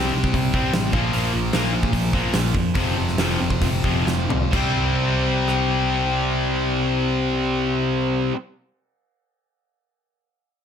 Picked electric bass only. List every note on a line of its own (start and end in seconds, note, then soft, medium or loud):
0.00 0.10 C2 loud
0.14 0.30 C2 medium
0.34 0.50 C2 medium
0.54 0.70 C2 medium
0.73 0.89 A1 medium
0.94 1.10 A#1 loud
1.13 1.30 A#1 loud
1.34 1.50 A#1 loud
1.54 1.87 A#1 medium
1.93 2.10 A#1 medium
2.13 2.30 A#1 medium
2.34 2.51 A#1 medium
2.55 2.72 F2 medium
2.75 2.93 F1 medium
2.97 3.15 F1 medium
3.18 3.36 F1 loud
3.41 3.58 F1 medium
3.62 3.80 F1 medium
3.84 4.03 F1 medium
4.07 4.25 F1 medium
4.29 4.49 C2 medium
4.53 8.30 C2 medium